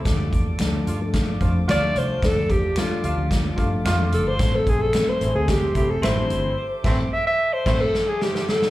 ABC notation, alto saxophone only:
X:1
M:4/4
L:1/16
Q:1/4=110
K:Dm
V:1 name="Alto saxophone"
z12 d2 c2 | A2 G2 F2 F2 z6 A c- | c A ^G A2 c2 G =G2 G A c4- | c2 z2 e e2 c2 A2 ^G =G2 A2 |]